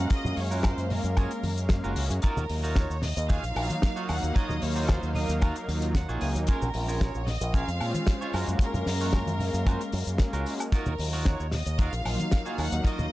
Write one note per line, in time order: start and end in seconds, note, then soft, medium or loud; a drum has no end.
0.00 0.34 G#3 medium
0.00 0.34 A#3 medium
0.00 0.34 C#4 medium
0.00 0.37 C#4 medium
0.00 0.38 F4 medium
0.00 0.37 F#4 medium
0.00 0.38 A#4 loud
0.00 0.35 F5 medium
0.00 0.11 F#5 loud
0.10 0.36 D#5 loud
0.10 kick loud
0.10 closed hi-hat medium
0.10 tambourine medium
0.10 cabasa medium
0.25 0.35 F#2 loud
0.25 tambourine soft
0.25 low conga medium
0.25 cabasa soft
0.37 0.74 F#2 loud
0.37 1.40 G#3 medium
0.37 1.41 A#3 medium
0.37 1.41 C#4 medium
0.37 0.64 C#5 loud
0.37 1.41 F5 medium
0.37 open hi-hat loud
0.37 tambourine medium
0.51 0.84 C#4 medium
0.51 0.84 F4 medium
0.51 0.84 F#4 medium
0.51 0.84 A#4 loud
0.51 tambourine soft
0.51 cabasa medium
0.63 0.89 C5 loud
0.63 kick loud
0.63 snare loud
0.63 closed hi-hat medium
0.63 tambourine soft
0.63 cabasa medium
0.63 high woodblock medium
0.77 0.99 F#2 medium
0.77 closed hi-hat medium
0.77 tambourine soft
0.77 cabasa soft
0.90 1.70 A#4 medium
0.90 open hi-hat loud
0.90 tambourine medium
0.90 low conga medium
1.04 1.26 F#2 medium
1.04 closed hi-hat medium
1.04 tambourine soft
1.04 cabasa medium
1.17 1.31 C#4 medium
1.17 1.31 F4 medium
1.17 1.31 F#4 medium
1.17 1.31 G#4 medium
1.17 kick loud
1.17 closed hi-hat medium
1.17 tambourine medium
1.17 cabasa medium
1.17 high woodblock medium
1.31 closed hi-hat medium
1.31 cabasa soft
1.43 1.80 F#2 medium
1.43 muted clean electric guitar stroke soft
1.43 open hi-hat loud
1.43 tambourine medium
1.43 high conga medium
1.57 1.93 G#3 medium
1.57 1.94 A#3 medium
1.57 1.94 C#4 medium
1.57 1.94 F5 medium
1.57 closed hi-hat medium
1.57 tambourine soft
1.57 cabasa medium
1.69 kick loud
1.69 snare loud
1.69 closed hi-hat medium
1.69 tambourine soft
1.69 cabasa medium
1.84 1.94 F#1 medium
1.84 2.04 C#4 medium
1.84 2.04 F4 medium
1.84 2.04 F#4 medium
1.84 2.04 A#4 loud
1.84 cabasa medium
1.96 2.08 C#2 medium
1.96 2.10 G#3 medium
1.96 2.10 A#3 medium
1.96 2.11 C#4 medium
1.96 2.11 F#4 medium
1.96 open hi-hat loud
1.96 tambourine medium
2.10 2.21 F#2 medium
2.10 closed hi-hat soft
2.10 tambourine soft
2.10 cabasa medium
2.22 2.43 D#4 loud
2.22 2.43 F4 loud
2.22 2.43 F#4 medium
2.22 2.43 A#4 loud
2.22 2.73 A#4 medium
2.22 kick loud
2.22 closed hi-hat medium
2.22 tambourine medium
2.22 cabasa medium
2.37 2.47 D#2 loud
2.37 tambourine soft
2.37 low conga medium
2.37 cabasa medium
2.49 2.86 D#2 loud
2.49 2.58 F#3 medium
2.49 2.59 A#3 medium
2.49 2.59 D#4 medium
2.49 2.59 F4 medium
2.49 open hi-hat loud
2.49 tambourine medium
2.63 2.96 D#4 medium
2.63 2.96 F4 medium
2.63 2.97 F#4 medium
2.63 2.97 A#4 loud
2.63 tambourine soft
2.63 cabasa medium
2.76 3.03 C#5 medium
2.76 kick loud
2.76 snare loud
2.76 closed hi-hat medium
2.76 tambourine medium
2.76 cabasa medium
2.90 3.12 D#2 medium
2.90 tambourine soft
2.90 cabasa medium
3.02 3.29 D#5 medium
3.02 snare medium
3.02 open hi-hat loud
3.02 tambourine medium
3.02 low conga medium
3.17 3.38 D#2 medium
3.17 closed hi-hat medium
3.17 tambourine soft
3.17 cabasa medium
3.29 3.43 D#4 medium
3.29 3.43 F4 medium
3.29 3.43 F#4 medium
3.29 3.43 G#4 loud
3.29 4.05 F5 loud
3.29 kick loud
3.29 closed hi-hat medium
3.29 tambourine medium
3.29 cabasa medium
3.43 3.54 A#1 medium
3.43 3.66 F#3 medium
3.43 3.66 A#3 medium
3.43 3.67 D#4 medium
3.43 3.67 F4 loud
3.43 closed hi-hat medium
3.43 cabasa soft
3.56 3.67 A#1 medium
3.56 muted clean electric guitar stroke soft
3.56 open hi-hat loud
3.56 tambourine medium
3.56 high woodblock medium
3.70 4.06 F#3 medium
3.70 4.06 A#3 medium
3.70 4.06 D#4 medium
3.70 4.07 F5 medium
3.70 closed hi-hat medium
3.70 tambourine soft
3.70 high conga medium
3.70 cabasa medium
3.82 kick loud
3.82 snare loud
3.82 closed hi-hat medium
3.82 tambourine soft
3.82 cabasa medium
3.96 4.16 D#4 medium
3.96 4.16 F4 medium
3.96 4.16 F#4 medium
3.96 4.16 C#5 medium
3.96 cabasa medium
4.09 4.21 D#2 medium
4.09 4.59 F#3 medium
4.09 4.59 A#3 medium
4.09 4.59 D#4 medium
4.09 4.60 F5 medium
4.09 4.35 F#5 loud
4.09 open hi-hat loud
4.09 tambourine medium
4.09 high woodblock medium
4.22 4.33 D#2 medium
4.22 closed hi-hat medium
4.22 tambourine soft
4.22 cabasa medium
4.35 4.56 D#4 loud
4.35 4.56 F4 loud
4.35 4.56 F#4 loud
4.35 4.56 C#5 loud
4.35 4.62 D#5 loud
4.35 kick loud
4.35 closed hi-hat medium
4.35 tambourine medium
4.35 cabasa medium
4.49 4.60 D#2 loud
4.49 tambourine soft
4.49 low conga medium
4.49 cabasa soft
4.62 4.99 D#2 loud
4.62 5.65 F#3 medium
4.62 5.65 A#3 medium
4.62 5.66 D#4 medium
4.62 4.88 C#5 loud
4.62 5.66 F5 medium
4.62 open hi-hat loud
4.62 tambourine medium
4.75 5.09 D#4 medium
4.75 5.09 F4 medium
4.75 5.09 F#4 medium
4.75 5.09 C5 loud
4.75 tambourine soft
4.75 cabasa medium
4.88 5.15 C5 medium
4.88 kick loud
4.88 snare loud
4.88 closed hi-hat medium
4.88 tambourine soft
4.88 cabasa medium
4.88 high woodblock medium
5.03 5.24 D#2 medium
5.03 tambourine soft
5.03 cabasa soft
5.15 5.91 A#4 medium
5.15 5.40 D#5 medium
5.15 open hi-hat loud
5.15 tambourine medium
5.15 low conga medium
5.29 5.51 D#2 medium
5.29 closed hi-hat medium
5.29 tambourine soft
5.29 cabasa medium
5.41 5.56 D#4 medium
5.41 5.56 F4 medium
5.41 5.56 F#4 medium
5.41 5.56 A#4 medium
5.41 5.67 F5 medium
5.41 kick loud
5.41 closed hi-hat medium
5.41 tambourine soft
5.41 cabasa medium
5.41 high woodblock medium
5.56 closed hi-hat medium
5.56 cabasa medium
5.68 6.05 D#2 medium
5.68 5.80 F#3 medium
5.68 5.80 A#3 medium
5.68 5.80 D#4 medium
5.68 5.80 F4 loud
5.68 5.93 F5 medium
5.68 muted clean electric guitar stroke soft
5.68 open hi-hat loud
5.68 tambourine medium
5.81 5.95 F#3 loud
5.81 5.95 A#3 medium
5.81 5.95 D#4 medium
5.81 5.95 F4 loud
5.81 closed hi-hat medium
5.81 tambourine soft
5.81 cabasa medium
5.94 6.20 F#5 medium
5.94 kick loud
5.94 snare loud
5.94 closed hi-hat loud
5.94 tambourine medium
5.94 cabasa medium
6.08 6.19 A#1 medium
6.08 6.46 F#3 loud
6.08 6.46 A#3 medium
6.08 6.46 D#4 medium
6.08 6.28 D#4 medium
6.08 6.29 F4 medium
6.08 6.28 F#4 medium
6.08 6.28 G#4 medium
6.08 cabasa medium
6.21 6.33 C#2 medium
6.21 6.46 G#5 medium
6.21 open hi-hat loud
6.21 tambourine medium
6.35 6.46 D#2 loud
6.35 closed hi-hat medium
6.35 tambourine soft
6.35 cabasa medium
6.47 6.68 C#4 loud
6.47 6.68 F4 loud
6.47 6.68 G#4 loud
6.47 6.97 A#4 medium
6.47 6.68 A#4 loud
6.47 kick loud
6.47 closed hi-hat loud
6.47 tambourine medium
6.47 cabasa medium
6.62 6.72 A#1 loud
6.62 tambourine soft
6.62 low conga medium
6.62 cabasa medium
6.73 7.11 A#1 loud
6.73 6.83 G#3 medium
6.73 6.83 C4 medium
6.73 6.83 C#4 medium
6.73 6.83 F4 medium
6.73 open hi-hat loud
6.73 tambourine medium
6.88 7.21 C#4 medium
6.88 7.21 F4 medium
6.88 7.21 G#4 medium
6.88 7.21 A#4 loud
6.88 cabasa medium
7.00 7.27 C#5 loud
7.00 kick loud
7.00 snare loud
7.00 closed hi-hat medium
7.00 tambourine medium
7.00 cabasa medium
7.15 7.36 A#1 medium
7.15 tambourine soft
7.15 cabasa medium
7.27 7.54 D#5 loud
7.27 snare medium
7.27 open hi-hat loud
7.27 tambourine loud
7.27 low conga medium
7.41 7.63 A#1 medium
7.41 closed hi-hat medium
7.41 tambourine soft
7.41 cabasa medium
7.54 7.68 C#4 medium
7.54 7.68 F4 medium
7.54 7.68 G#4 medium
7.54 7.68 A#4 medium
7.54 8.30 F5 loud
7.54 kick loud
7.54 closed hi-hat medium
7.54 tambourine medium
7.54 cabasa medium
7.67 7.78 F2 medium
7.67 7.91 G#3 loud
7.67 7.91 C4 medium
7.67 7.91 C#4 medium
7.67 7.92 F4 loud
7.67 closed hi-hat medium
7.67 cabasa medium
7.81 7.92 A#2 medium
7.81 muted clean electric guitar stroke soft
7.81 open hi-hat medium
7.81 tambourine loud
7.81 high woodblock medium
7.94 8.30 G#3 medium
7.94 8.31 C#4 medium
7.94 8.31 F4 medium
7.94 8.31 C5 medium
7.94 closed hi-hat medium
7.94 tambourine soft
7.94 high conga medium
7.94 cabasa medium
8.07 kick loud
8.07 snare loud
8.07 closed hi-hat medium
8.07 tambourine medium
8.07 cabasa medium
8.21 8.33 C#4 medium
8.21 8.33 F4 medium
8.21 8.33 G#4 medium
8.21 8.34 C#5 loud
8.21 cabasa medium
8.33 8.45 F#2 medium
8.33 8.84 G#3 medium
8.33 8.84 A#3 medium
8.33 8.84 C#4 medium
8.33 8.87 C#4 medium
8.33 8.87 F4 medium
8.33 8.87 F#4 medium
8.33 8.87 A#4 loud
8.33 8.84 F5 medium
8.33 open hi-hat loud
8.33 tambourine loud
8.33 high woodblock medium
8.47 8.58 F#2 medium
8.47 closed hi-hat medium
8.47 tambourine soft
8.47 cabasa medium
8.59 10.42 A#4 loud
8.59 kick loud
8.59 closed hi-hat medium
8.59 tambourine medium
8.59 cabasa medium
8.74 8.84 F#2 loud
8.74 closed hi-hat medium
8.74 tambourine soft
8.74 low conga medium
8.74 cabasa medium
8.86 9.23 F#2 loud
8.86 9.90 G#3 medium
8.86 9.90 A#3 medium
8.86 9.90 C#4 medium
8.86 9.91 F5 medium
8.86 snare medium
8.86 open hi-hat loud
8.86 tambourine medium
9.01 9.34 C#4 medium
9.01 9.34 F4 medium
9.01 9.34 F#4 medium
9.01 9.34 C#5 loud
9.01 cabasa medium
9.13 kick loud
9.13 snare loud
9.13 tambourine medium
9.13 cabasa medium
9.13 high woodblock medium
9.27 9.49 F#2 medium
9.27 closed hi-hat medium
9.27 tambourine soft
9.27 high conga medium
9.27 cabasa medium
9.40 open hi-hat loud
9.40 tambourine medium
9.40 low conga medium
9.54 9.75 F#2 medium
9.54 closed hi-hat medium
9.54 tambourine soft
9.54 cabasa medium
9.66 9.81 C#4 medium
9.66 9.81 F4 medium
9.66 9.81 F#4 medium
9.66 9.81 C5 medium
9.66 kick loud
9.66 closed hi-hat medium
9.66 tambourine medium
9.66 cabasa medium
9.66 high woodblock medium
9.81 closed hi-hat medium
9.81 cabasa soft
9.92 10.05 F#2 loud
9.92 muted clean electric guitar stroke soft
9.92 open hi-hat loud
9.92 tambourine medium
10.07 10.17 F#2 medium
10.07 10.43 G#3 medium
10.07 10.43 A#3 medium
10.07 10.43 C#4 medium
10.07 10.44 F5 medium
10.07 closed hi-hat medium
10.07 tambourine soft
10.07 cabasa medium
10.18 kick loud
10.18 snare loud
10.18 closed hi-hat loud
10.18 tambourine medium
10.18 cabasa medium
10.33 10.44 C#2 medium
10.33 10.53 C#4 medium
10.33 10.53 F4 medium
10.33 10.53 F#4 medium
10.33 10.53 A#4 loud
10.33 closed hi-hat medium
10.33 cabasa soft
10.46 10.60 G#3 medium
10.46 10.60 A#3 medium
10.46 10.60 C#4 medium
10.46 10.60 F#4 medium
10.46 open hi-hat loud
10.46 tambourine medium
10.59 closed hi-hat medium
10.59 tambourine soft
10.59 cabasa medium
10.59 high woodblock medium
10.72 10.93 D#4 loud
10.72 10.93 F4 loud
10.72 10.93 F#4 loud
10.72 10.93 A#4 loud
10.72 11.23 A#4 medium
10.72 muted fingered electric bass stroke soft
10.72 kick loud
10.72 closed hi-hat medium
10.72 tambourine medium
10.72 cabasa medium
10.86 10.97 D#2 loud
10.86 tambourine soft
10.86 low conga medium
10.86 cabasa soft
10.98 11.36 D#2 loud
10.98 11.08 F#3 medium
10.98 11.08 A#3 medium
10.98 11.08 D#4 medium
10.98 11.08 F4 medium
10.98 open hi-hat loud
10.98 tambourine medium
11.12 11.46 D#4 medium
11.12 11.46 F4 medium
11.12 11.46 F#4 medium
11.12 11.46 A#4 medium
11.12 tambourine soft
11.12 cabasa medium
11.25 11.53 C#5 medium
11.25 kick loud
11.25 snare loud
11.25 closed hi-hat loud
11.25 tambourine medium
11.25 cabasa medium
11.40 11.61 D#2 medium
11.40 tambourine soft
11.40 cabasa medium
11.51 11.77 D#5 medium
11.51 snare medium
11.51 open hi-hat loud
11.51 tambourine medium
11.51 low conga medium
11.66 11.88 D#2 loud
11.66 closed hi-hat medium
11.66 tambourine soft
11.66 cabasa medium
11.78 11.93 D#4 medium
11.78 11.93 F4 medium
11.78 11.93 F#4 medium
11.78 11.93 A#4 loud
11.78 12.59 F5 loud
11.78 kick loud
11.78 closed hi-hat medium
11.78 tambourine medium
11.78 cabasa medium
11.92 12.03 A#1 medium
11.92 12.16 F#3 loud
11.92 12.16 A#3 medium
11.92 12.16 D#4 medium
11.92 12.16 F4 loud
11.92 closed hi-hat medium
11.92 cabasa soft
12.05 12.17 A#1 medium
12.05 muted clean electric guitar stroke soft
12.05 open hi-hat loud
12.05 tambourine medium
12.05 high woodblock medium
12.18 12.55 F#3 medium
12.18 12.55 A#3 medium
12.18 12.55 D#4 medium
12.18 12.56 F5 medium
12.18 closed hi-hat medium
12.18 tambourine soft
12.18 high conga medium
12.18 cabasa medium
12.32 kick loud
12.32 snare loud
12.32 closed hi-hat medium
12.32 tambourine medium
12.32 cabasa medium
12.46 12.65 D#4 medium
12.46 12.65 F4 medium
12.46 12.66 F#4 medium
12.46 12.66 G#4 loud
12.46 cabasa soft
12.58 12.70 D#2 medium
12.58 13.08 F#3 medium
12.58 13.09 A#3 medium
12.58 13.09 D#4 medium
12.58 13.09 F5 medium
12.58 12.84 F#5 loud
12.58 open hi-hat loud
12.58 tambourine loud
12.58 high woodblock medium
12.72 12.83 D#2 medium
12.72 closed hi-hat soft
12.72 tambourine soft
12.72 cabasa medium
12.85 13.05 D#4 loud
12.85 13.05 F4 loud
12.85 13.05 F#4 loud
12.85 13.05 A#4 loud
12.85 13.12 D#5 loud
12.85 kick loud
12.85 closed hi-hat medium
12.85 tambourine medium
12.85 cabasa medium
12.98 13.09 D#2 loud
12.98 tambourine soft
12.98 low conga medium
12.98 cabasa soft